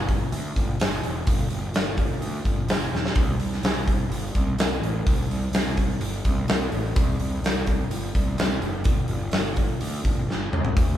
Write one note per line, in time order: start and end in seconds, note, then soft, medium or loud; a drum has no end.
0.00 0.22 G1 medium
0.09 kick medium
0.09 open hi-hat medium
0.32 0.51 D2 medium
0.32 open hi-hat medium
0.56 0.75 G1 medium
0.56 kick medium
0.56 open hi-hat medium
0.80 0.99 G1 medium
0.80 snare loud
0.80 open hi-hat medium
1.03 1.22 E1 medium
1.03 open hi-hat medium
1.27 1.46 G1 medium
1.27 kick loud
1.27 open hi-hat medium
1.50 1.69 G1 medium
1.50 open hi-hat medium
1.73 2.11 G1 medium
1.73 snare loud
1.73 open hi-hat medium
1.97 kick medium
1.97 open hi-hat medium
2.20 2.39 D2 medium
2.20 open hi-hat medium
2.45 2.64 G1 medium
2.45 kick medium
2.45 open hi-hat soft
2.67 2.86 G1 medium
2.67 snare loud
2.67 open hi-hat medium
2.90 3.10 E1 medium
2.95 snare medium
3.06 snare medium
3.15 3.35 C2 medium
3.15 kick loud
3.15 open hi-hat medium
3.38 3.57 C2 medium
3.38 open hi-hat medium
3.53 snare soft
3.62 4.00 C2 medium
3.62 snare loud
3.62 open hi-hat medium
3.88 kick medium
3.88 open hi-hat medium
4.09 4.29 G1 medium
4.09 open hi-hat medium
4.35 4.54 C2 medium
4.35 kick medium
4.35 open hi-hat medium
4.58 4.77 C2 medium
4.58 snare loud
4.58 open hi-hat medium
4.80 5.00 A1 medium
4.80 open hi-hat medium
5.06 5.25 C2 medium
5.06 kick loud
5.06 open hi-hat medium
5.28 5.47 C2 medium
5.28 open hi-hat medium
5.51 5.89 C2 medium
5.51 open hi-hat medium
5.55 snare loud
5.77 kick medium
5.77 open hi-hat medium
6.00 6.19 G1 medium
6.00 open hi-hat medium
6.25 6.44 C2 medium
6.25 kick medium
6.25 open hi-hat medium
6.48 6.67 C2 medium
6.48 snare loud
6.48 open hi-hat medium
6.72 6.91 A1 medium
6.72 open hi-hat medium
6.95 7.15 C2 medium
6.95 kick loud
6.95 open hi-hat medium
7.20 7.39 C2 medium
7.20 open hi-hat medium
7.42 7.80 C2 medium
7.42 open hi-hat medium
7.46 snare medium
7.67 kick medium
7.67 open hi-hat soft
7.90 8.09 G1 medium
7.90 open hi-hat medium
8.15 8.34 C2 medium
8.15 kick medium
8.15 open hi-hat medium
8.37 8.57 C2 medium
8.37 snare loud
8.37 open hi-hat medium
8.62 8.85 F#1 medium
8.62 open hi-hat soft
8.84 9.04 G1 medium
8.84 kick loud
8.84 open hi-hat medium
9.08 9.28 G1 medium
9.08 open hi-hat medium
9.31 9.71 G1 medium
9.31 snare medium
9.31 open hi-hat medium
9.56 kick medium
9.56 open hi-hat medium
9.80 10.00 D2 medium
9.80 open hi-hat medium
10.04 10.23 G1 medium
10.04 kick medium
10.04 open hi-hat soft
10.27 10.47 G1 medium
10.27 snare medium
10.51 10.70 C#2 medium
10.51 mid tom medium
10.65 floor tom medium
10.77 10.95 D2 medium
10.77 kick loud
10.77 open hi-hat medium